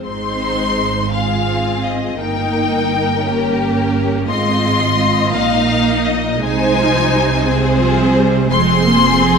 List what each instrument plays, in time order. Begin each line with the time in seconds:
0.04 double bass section G#1, cello section G#2, viola section G#3 C4, violin section D#4 C5 C6
1.13 viola section C4, violin section F4 G#4 F5
1.85 violin section D#5
2.18 double bass section G1, cello section G2, viola section A#3 D#4, violin section D#4 A#4 G5
3.25 viola section A#3 C#4, violin section G4
4.29 double bass section G#1, cello section G#2, viola section G#3 C4, violin section F4 D#5 C6
4.64 viola section G#3
4.99 viola section C4
5.32 double bass section A#1, cello section A#2, viola section A#3 D#4, violin section D#4 F5
6.06 violin section D#5
6.42 double bass section C2, cello section C3, viola section G#3 D#4, violin section D#4 C5 G#5
6.78 viola section F3
7.13 viola section G3
7.46 viola section G#3 C4, violin section G#4 C5
7.81 viola section F3
8.15 viola section G3
8.50 double bass section F1, cello section F2, viola section G#3 C4, violin section G#4 C6
8.85 viola section A#3
9.21 viola section C4